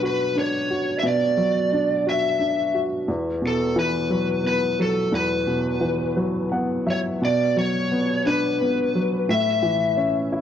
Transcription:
Already playing: upright piano B2 F#3 D4
0.02 upright piano F#4, lead electric guitar B4
0.35 upright piano D4, lead electric guitar C#5
0.70 upright piano F#4
0.99 upright piano B2, lead electric guitar E5
1.07 lead electric guitar D5
1.37 upright piano F#3
1.73 upright piano D4
2.06 upright piano F#4, lead electric guitar E5
2.40 upright piano D4
2.74 upright piano F#4
3.08 upright piano E2
3.42 upright piano B2
3.47 lead electric guitar A4
3.76 upright piano E3, lead electric guitar B4
4.10 upright piano F#3
4.44 upright piano B3, lead electric guitar B4
4.79 upright piano F#3, lead electric guitar A4
5.12 upright piano E2, lead electric guitar B4
5.47 upright piano B2
5.81 upright piano E3
6.17 upright piano F#3
6.52 upright piano B3 F#5
6.87 upright piano F#3 E5, lead electric guitar C#5
7.22 upright piano B2, lead electric guitar D5
7.56 upright piano F#3, lead electric guitar C#5
7.92 upright piano B3
8.26 upright piano D4, lead electric guitar B4
8.61 upright piano B3
8.95 upright piano F#3
9.29 upright piano A2, lead electric guitar E5
9.63 upright piano E3
9.97 upright piano C#4
10.32 upright piano E4

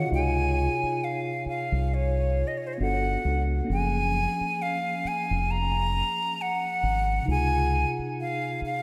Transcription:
Already playing: tine electric piano F4 F#4 G#4 C#5 D#5 F5
0.06 tine electric piano C3 D#4
0.12 fingered electric bass C#2, tine electric piano F4, flute G#5
0.16 tine electric piano G4
0.23 tine electric piano G#4
0.83 muted fingered electric bass stroke
1.04 flute F5
1.46 flute F5, muted fingered electric bass stroke
1.72 fingered electric bass C2
1.94 flute C#5
2.47 flute D#5
2.58 flute C#5
2.67 flute C5
2.73 flute C#5
2.78 fingered electric bass G1, tine electric piano B3 D4 F#4, flute F#5
2.83 tine electric piano A4
3.25 fingered electric bass C#2
3.64 tine electric piano A#3 C#4
3.70 fingered electric bass F#1, tine electric piano F3, flute G#5
3.74 tine electric piano G#4
4.41 muted fingered electric bass stroke
4.62 flute F5
5.05 flute G#5, muted fingered electric bass stroke
5.31 fingered electric bass F1
5.51 flute A#5
6.41 flute F#5
6.83 fingered electric bass G#1
7.22 tine electric piano C3 D#4
7.28 fingered electric bass C#2, tine electric piano F4, flute G#5
7.32 tine electric piano G#4
7.99 muted fingered electric bass stroke
8.21 flute F5
8.62 flute F5, muted fingered electric bass stroke

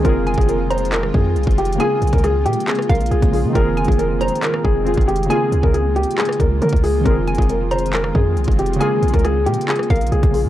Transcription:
Already playing: ambient pad G#3 F4
0.00 synth keys D#3 C4
0.05 808-style bass F1, ambient pad D#3 C4, synth keys F4, felt piano A#4, kick, closed hi-hat
0.09 synth keys G#4
0.27 synth pluck G#5, closed hi-hat
0.34 808-style bass F1, felt piano G#4, kick, closed hi-hat
0.41 closed hi-hat
0.49 felt piano A#4, closed hi-hat
0.70 felt piano C5, synth pluck A#5, closed hi-hat
0.78 closed hi-hat
0.85 closed hi-hat
0.92 felt piano A#4, clap, closed hi-hat
1.03 cross-stick
1.14 808-style bass F2, felt piano G#4, kick
1.36 808-style bass C2, closed hi-hat
1.43 808-style bass F1, kick, closed hi-hat
1.51 closed hi-hat
1.58 felt piano G4, closed hi-hat
1.65 closed hi-hat
1.73 synth keys C#3, closed hi-hat
1.78 ambient pad C#3 G#3 A#3, synth keys A#3 F4, felt piano G#4, synth pluck G#5, closed hi-hat
1.84 synth keys G#4
2.02 808-style bass A#1, closed hi-hat
2.07 closed hi-hat
2.13 808-style bass C#2, felt piano A#4, kick, closed hi-hat
2.18 closed hi-hat
2.24 felt piano G#4, cross-stick, closed hi-hat
2.46 808-style bass A#2, felt piano G4, closed hi-hat
2.53 closed hi-hat
2.60 closed hi-hat
2.67 felt piano G#4, clap, closed hi-hat
2.75 cross-stick, closed hi-hat
2.82 closed hi-hat
2.89 808-style bass A#1, felt piano A#4, synth pluck F5, kick, closed hi-hat
2.95 closed hi-hat
3.01 closed hi-hat
3.06 closed hi-hat
3.11 808-style bass A#1, felt piano G#4, closed hi-hat
3.22 808-style bass A#1, kick, closed hi-hat
3.30 synth keys C#3 A#3 F4, open hi-hat
3.34 synth keys G#4
3.44 808-style bass C#3
3.50 synth keys D#3 C4
3.55 808-style bass F1, ambient pad D#3 C4, synth keys F4 G#4, felt piano A#4, kick, closed hi-hat
3.77 synth pluck G#5, closed hi-hat
3.85 808-style bass F1, felt piano G#4, kick, closed hi-hat
3.92 closed hi-hat
3.99 felt piano A#4, closed hi-hat
4.21 felt piano C5, synth pluck A#5, closed hi-hat
4.28 closed hi-hat
4.36 closed hi-hat
4.43 felt piano A#4, clap, closed hi-hat
4.54 cross-stick
4.64 808-style bass F1, felt piano G#4, kick
4.83 synth keys D#3 C4 F4, closed hi-hat
4.88 synth keys G#4
4.94 808-style bass F1, kick, closed hi-hat
5.01 closed hi-hat
5.08 felt piano G4, closed hi-hat
5.16 closed hi-hat
5.23 synth keys C#3, closed hi-hat
5.29 ambient pad C#3 G#3 A#3 F4, synth keys A#3 F4, felt piano G#4, synth pluck G#5, closed hi-hat
5.35 synth keys G#4
5.52 808-style bass C#2, closed hi-hat
5.63 808-style bass C#2, felt piano A#4, kick
5.74 felt piano G#4, closed hi-hat
5.96 felt piano G4, closed hi-hat
6.03 closed hi-hat
6.11 closed hi-hat
6.18 felt piano G#4, clap, closed hi-hat
6.25 cross-stick, closed hi-hat
6.33 closed hi-hat
6.39 808-style bass C#2, felt piano A#4, kick, closed hi-hat
6.62 808-style bass C#3, felt piano A#4, closed hi-hat
6.69 808-style bass C#2, kick, closed hi-hat
6.76 closed hi-hat
6.84 felt piano G#4, open hi-hat
7.01 synth keys D#3 C4
7.05 808-style bass F1, ambient pad D#3 G#3 C4, synth keys F4, felt piano A#4, kick, closed hi-hat
7.10 synth keys G#4
7.27 synth pluck G#5, closed hi-hat
7.35 808-style bass F1, kick, closed hi-hat
7.39 felt piano G#4, closed hi-hat
7.49 felt piano A#4, closed hi-hat
7.71 felt piano C5, synth pluck A#5, closed hi-hat
7.79 closed hi-hat
7.86 closed hi-hat
7.93 felt piano A#4, clap, closed hi-hat
8.04 cross-stick
8.15 808-style bass F2, felt piano G#4, kick
8.37 808-style bass C2, closed hi-hat
8.44 808-style bass F1, kick, closed hi-hat
8.51 closed hi-hat
8.59 felt piano G4, closed hi-hat
8.66 closed hi-hat
8.73 synth keys C#3, closed hi-hat
8.79 ambient pad C#3 A#3, synth keys A#3 F4, felt piano G#4, synth pluck G#5, closed hi-hat
8.85 synth keys G#4
9.03 808-style bass A#1, closed hi-hat
9.08 closed hi-hat
9.14 808-style bass C#2, felt piano A#4, kick, closed hi-hat
9.19 closed hi-hat
9.24 felt piano G#4, cross-stick, closed hi-hat
9.46 808-style bass A#2, felt piano G4, closed hi-hat
9.54 closed hi-hat
9.61 closed hi-hat
9.68 felt piano G#4, clap, closed hi-hat
9.76 cross-stick, closed hi-hat
9.83 closed hi-hat
9.90 808-style bass A#1, felt piano A#4, synth pluck F5, kick, closed hi-hat
9.96 closed hi-hat
10.01 closed hi-hat
10.07 closed hi-hat
10.12 808-style bass A#1, felt piano G#4, closed hi-hat
10.23 808-style bass A#1, kick, closed hi-hat
10.30 synth keys C#3 A#3 F4, open hi-hat
10.35 synth keys G#4
10.45 808-style bass C#3

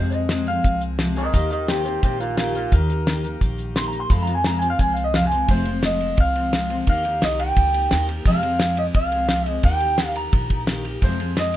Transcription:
Already playing: steel-string acoustic guitar F2 C3 F3 G#3 C4 G#4, upright bass F2, clean electric guitar C5
0.12 steel-string acoustic guitar F3 G#3 C4 G#4, clean electric guitar D#5, closed hi-hat
0.29 steel-string acoustic guitar F2 C3 F3 G#3 C4 G#4, snare, closed hi-hat
0.47 steel-string acoustic guitar F3 G#3 C4 G#4, clean electric guitar F5, closed hi-hat
0.63 upright bass C2, steel-string acoustic guitar F3 G#3 C4 G#4, kick, closed hi-hat
0.81 closed hi-hat
0.98 steel-string acoustic guitar F2 C3 F3 G#3 C4 G#4, snare, closed hi-hat
1.16 steel-string acoustic guitar F3 G#3 C4 G#4, clean electric guitar A#4 D#5, closed hi-hat
1.33 upright bass D#2, steel-string acoustic guitar D#3 A#3 D#4 G4, clean electric guitar A#4 D#5, kick, closed hi-hat
1.50 steel-string acoustic guitar A#3 D#4 G4, clean electric guitar A#4 D#5, closed hi-hat
1.68 steel-string acoustic guitar D#3 A#3 D#4 G4, clean electric guitar G4 C5, snare, closed hi-hat
1.85 steel-string acoustic guitar A#3 D#4 G4, clean electric guitar G4 C5, closed hi-hat
2.02 upright bass A#1, steel-string acoustic guitar D#3 A#3 D#4 G4, clean electric guitar G4 C5, kick, closed hi-hat
2.20 clean electric guitar F4 A#4, closed hi-hat
2.37 steel-string acoustic guitar D#3 A#3 D#4 G4, clean electric guitar F4 A#4, snare, closed hi-hat
2.55 steel-string acoustic guitar A#3 D#4 G4, clean electric guitar F4 A#4, closed hi-hat
2.72 upright bass D#2, steel-string acoustic guitar D#3 A#3 D#4 G4, clean electric guitar A#4, kick, closed hi-hat
2.89 steel-string acoustic guitar A#3 D#4 G4, closed hi-hat
3.06 steel-string acoustic guitar D#3 A#3 D#4 G4, snare, closed hi-hat
3.24 steel-string acoustic guitar A#3 D#4 G4, closed hi-hat
3.41 upright bass A#1, steel-string acoustic guitar D#3 A#3 D#4 G4, kick, closed hi-hat
3.58 closed hi-hat
3.76 steel-string acoustic guitar D#3 A#3 D#4 G4, clean electric guitar C6, snare, closed hi-hat
3.88 clean electric guitar A#5
3.93 steel-string acoustic guitar A#3 D#4 G4, closed hi-hat
4.00 clean electric guitar C6
4.10 steel-string acoustic guitar F2 C3 F3 G#3 C4 F4, upright bass F2, clean electric guitar B5, kick, closed hi-hat
4.23 clean electric guitar A#5
4.27 steel-string acoustic guitar F3 G#3 C4 F4, closed hi-hat
4.35 clean electric guitar G#5
4.44 steel-string acoustic guitar F2 C3 F3 G#3 C4 F4, clean electric guitar A#5, snare, closed hi-hat
4.59 steel-string acoustic guitar G#3 C4 F4, clean electric guitar G#5, closed hi-hat
4.64 steel-string acoustic guitar F3
4.70 clean electric guitar F5
4.79 upright bass C2, steel-string acoustic guitar F3 G#3 C4 F4, clean electric guitar G#5, kick, closed hi-hat
4.93 clean electric guitar F5, closed hi-hat
5.04 clean electric guitar D#5
5.14 steel-string acoustic guitar F2 C3 F3 G#3 C4 F4, clean electric guitar F5, snare, closed hi-hat
5.27 clean electric guitar G#5
5.31 steel-string acoustic guitar F3 G#3 C4 F4, closed hi-hat
5.48 upright bass F1, steel-string acoustic guitar F2 C3 F3 G#3 C4 F4, clean electric guitar C5, kick, ride
5.65 steel-string acoustic guitar F3 G#3 C4 F4, ride
5.83 steel-string acoustic guitar F3 G#3 C4 F4, clean electric guitar D#5, snare, ride
6.00 ride
6.17 upright bass C2, clean electric guitar F5, kick, ride
6.36 steel-string acoustic guitar F3 G#3 C4 F4, ride
6.52 steel-string acoustic guitar F3 G#3 C4 F4, snare, ride
6.69 steel-string acoustic guitar F3 G#3 C4 F4, ride
6.86 upright bass D#2, steel-string acoustic guitar D#3 A#3 D#4 G4, clean electric guitar F5, kick, ride
7.04 steel-string acoustic guitar A#3 D#4 G4, ride
7.21 upright bass C2, steel-string acoustic guitar D#3 A#3 D#4 G4, clean electric guitar D#5, snare, ride
7.40 clean electric guitar G5, ride
7.57 upright bass C#2, kick, ride
7.74 steel-string acoustic guitar A#3 D#4 G4, ride
7.91 upright bass D#2, steel-string acoustic guitar D#3 A#3 D#4 G4, snare, ride
8.08 steel-string acoustic guitar A#3 D#4 G4, ride
8.25 upright bass F2, steel-string acoustic guitar F2 C3 F3 G#3 C4 G#4, clean electric guitar F5, kick, ride
8.43 steel-string acoustic guitar F3 G#3 C4 G#4, ride
8.60 steel-string acoustic guitar F3 G#3 C4 G#4, snare, ride
8.77 clean electric guitar D#5, ride
8.95 upright bass C2, clean electric guitar F5, kick, ride
9.12 steel-string acoustic guitar F3 G#3 C4 G#4, ride
9.29 steel-string acoustic guitar F3 G#3 C4 G#4, snare, ride
9.46 steel-string acoustic guitar F3 G#3 C4 G#4, clean electric guitar D#5, ride
9.63 upright bass D#2, steel-string acoustic guitar D#3 A#3 D#4 G4, clean electric guitar G5, kick, ride
9.80 steel-string acoustic guitar A#3 D#4 G4, ride
9.98 steel-string acoustic guitar D#3 A#3 D#4 G4, snare, ride
10.16 clean electric guitar A#5, ride
10.33 upright bass A#1, kick, ride
10.49 steel-string acoustic guitar A#3 D#4 G4, kick, ride
10.67 steel-string acoustic guitar D#3 A#3 D#4 G4, snare, ride
10.84 steel-string acoustic guitar A#3 D#4 G4, ride
11.01 steel-string acoustic guitar F2 C3 F3 G#3 C4 G#4, upright bass F2, clean electric guitar C5, kick, ride
11.19 steel-string acoustic guitar F3 G#3 C4 G#4, ride
11.36 steel-string acoustic guitar F3 G#3 C4 G#4, clean electric guitar D#5, snare, ride

